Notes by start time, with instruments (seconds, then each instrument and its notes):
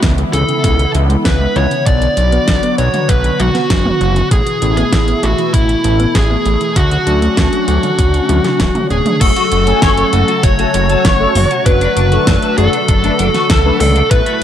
Already playing: analog synth pad D3 E3 B3 E4
0.03 analog synth bass C#2, synth arpeggio sound B3, kick, snare, closed hi-hat
0.18 synth arpeggio sound G#3, closed hi-hat
0.33 analog synth bass C#2, synth arpeggio sound E3, lead electric guitar A4, closed hi-hat
0.49 synth arpeggio sound C#3, closed hi-hat
0.64 analog synth bass C#2, synth arpeggio sound B2, kick, closed hi-hat
0.79 synth arpeggio sound C#3, closed hi-hat
0.95 analog synth bass C#2, synth arpeggio sound E3, closed hi-hat
1.10 synth arpeggio sound G#3, closed hi-hat
1.25 analog synth bass C#2, synth arpeggio sound B3, lead electric guitar B4, kick, snare, closed hi-hat
1.41 synth arpeggio sound G#3
1.56 analog synth bass C#2, synth arpeggio sound E3, lead electric guitar C#5, closed hi-hat
1.71 synth arpeggio sound C#3, closed hi-hat
1.86 analog synth bass B1, synth arpeggio sound B2, analog synth pad D3 F#3 F#4, lead electric guitar D5, kick, closed hi-hat
2.02 synth arpeggio sound D3, closed hi-hat
2.17 analog synth bass B1, synth arpeggio sound F#3, closed hi-hat
2.32 synth arpeggio sound B3, closed hi-hat
2.48 analog synth bass B1, synth arpeggio sound D4, kick, snare, closed hi-hat
2.63 synth arpeggio sound B3, closed hi-hat
2.78 analog synth bass B1, synth arpeggio sound F#3, lead electric guitar C#5, closed hi-hat
2.94 synth arpeggio sound D3, closed hi-hat, mid tom
3.09 analog synth bass B1, synth arpeggio sound B2, lead electric guitar B4, kick, closed hi-hat
3.24 synth arpeggio sound D3, closed hi-hat
3.40 analog synth bass B1, synth arpeggio sound F#3, lead electric guitar F#4, closed hi-hat, mid tom
3.55 synth arpeggio sound B3, snare, closed hi-hat
3.70 analog synth bass F#1, synth arpeggio sound D4, kick, snare, closed hi-hat
3.85 synth arpeggio sound B3, mid tom
4.01 analog synth bass F#1, synth arpeggio sound F#3, closed hi-hat
4.16 synth arpeggio sound D3, closed hi-hat
4.31 analog synth bass A1, synth arpeggio sound B2, analog synth pad B2 E3 A3 E4, lead electric guitar G#4, kick, closed hi-hat
4.47 synth arpeggio sound E3, closed hi-hat
4.62 analog synth bass A1, synth arpeggio sound A3, closed hi-hat
4.77 synth arpeggio sound B3, lead electric guitar G#4, closed hi-hat
4.93 analog synth bass A1, synth arpeggio sound E4, kick, snare, closed hi-hat
5.08 synth arpeggio sound B3, closed hi-hat
5.23 analog synth bass A1, synth arpeggio sound A3, lead electric guitar F#4, closed hi-hat
5.38 synth arpeggio sound E3, closed hi-hat
5.54 analog synth bass A1, synth arpeggio sound B2, lead electric guitar E4, kick, closed hi-hat
5.69 synth arpeggio sound E3, closed hi-hat
5.84 analog synth bass A1, synth arpeggio sound A3, closed hi-hat
6.00 synth arpeggio sound B3, closed hi-hat
6.15 analog synth bass A1, synth arpeggio sound E4, lead electric guitar G#4, kick, snare, closed hi-hat
6.30 synth arpeggio sound B3
6.46 analog synth bass A1, synth arpeggio sound A3, closed hi-hat
6.61 synth arpeggio sound E3, closed hi-hat
6.76 analog synth bass D2, synth arpeggio sound C#3, analog synth pad F#3 C#4 D4, lead electric guitar F#4, kick, closed hi-hat
6.91 synth arpeggio sound D3, closed hi-hat
7.07 analog synth bass D2, synth arpeggio sound F#3, closed hi-hat
7.22 synth arpeggio sound A3, closed hi-hat
7.37 analog synth bass D2, synth arpeggio sound C#4, kick, snare, closed hi-hat
7.53 synth arpeggio sound A3, closed hi-hat
7.68 analog synth bass D2, synth arpeggio sound F#3, closed hi-hat
7.83 synth arpeggio sound D3, closed hi-hat, mid tom
7.99 analog synth bass D2, synth arpeggio sound C#3, kick, closed hi-hat
8.14 synth arpeggio sound D3, closed hi-hat
8.29 analog synth bass D2, synth arpeggio sound F#3, closed hi-hat, mid tom, high tom
8.44 synth arpeggio sound C#3, snare, closed hi-hat, high tom
8.60 analog synth bass D1, synth arpeggio sound F#3, kick, snare, closed hi-hat, mid tom
8.75 synth arpeggio sound C#3, closed hi-hat, mid tom
8.90 analog synth bass D1, synth arpeggio sound C#3, lead electric guitar G#4, closed hi-hat
9.06 synth arpeggio sound A3, closed hi-hat, mid tom
9.21 analog synth bass F#1, analog synth pad C#3 F#3 A3 F#4, analog polysynth A3 C#4 F#4, clean electric guitar F#4, synth bell A4, lead electric guitar A4, kick, closed hi-hat, crash
9.36 clean electric guitar F#4, closed hi-hat
9.52 analog synth bass F#1, clean electric guitar F#4, closed hi-hat
9.67 analog polysynth A3 C#4 G#5, clean electric guitar A4, closed hi-hat
9.82 analog synth bass F#1, clean electric guitar C#5, kick, snare, closed hi-hat
9.97 clean electric guitar C#5, closed hi-hat
10.13 analog synth bass F#1, analog polysynth A3 C#4 F#4, clean electric guitar F#4, closed hi-hat
10.28 clean electric guitar F#4, closed hi-hat
10.43 analog synth bass F#1, clean electric guitar F#4, lead electric guitar C#5, synth bell C#5, kick, closed hi-hat
10.59 analog polysynth A3 C#4 A4, clean electric guitar F#4, closed hi-hat
10.74 analog synth bass F#1, clean electric guitar F#4, closed hi-hat
10.90 clean electric guitar A4, closed hi-hat
11.05 analog synth bass F#1, clean electric guitar C#5, kick, snare, closed hi-hat
11.20 analog polysynth A3 C#4 A4, clean electric guitar C#5
11.35 analog synth bass F#1, clean electric guitar F#4, mid tom, open hi-hat
11.51 clean electric guitar F#4, closed hi-hat
11.66 analog synth bass F#1, analog synth pad D3 A3, analog polysynth A3 D4 F#4, clean electric guitar D4, lead electric guitar B4, synth bell B4, kick, closed hi-hat
11.81 clean electric guitar D4, closed hi-hat
11.97 analog synth bass F#1, clean electric guitar D4, closed hi-hat
12.12 analog polysynth A3 D4 A4, clean electric guitar F#4, closed hi-hat
12.27 analog synth bass F#1, clean electric guitar A4, kick, snare, closed hi-hat
12.42 clean electric guitar A4, closed hi-hat
12.58 analog synth bass F#1, analog polysynth A3 D4 F#4, clean electric guitar D4, synth bell A4, lead electric guitar A4, closed hi-hat, mid tom
12.73 clean electric guitar D4, closed hi-hat
12.88 analog synth bass F#1, clean electric guitar D4, kick, closed hi-hat
13.04 analog polysynth A3 D4 B4, clean electric guitar D4, closed hi-hat
13.19 analog synth bass F#1, clean electric guitar D4, closed hi-hat
13.34 clean electric guitar F#4, snare, closed hi-hat
13.50 analog synth bass C#2, clean electric guitar A4, kick, snare, closed hi-hat
13.65 analog polysynth A3 D4 B4, clean electric guitar A4
13.80 analog synth bass C#2, clean electric guitar D4, lead electric guitar A4, synth bell A4, mid tom, open hi-hat
13.96 clean electric guitar D4, closed hi-hat
14.11 analog synth bass A1, analog polysynth A2 A3 B3 E4, analog synth pad B2 E3 E4, clean electric guitar A3, lead electric guitar B4, synth bell B4, kick, closed hi-hat
14.26 clean electric guitar A3, closed hi-hat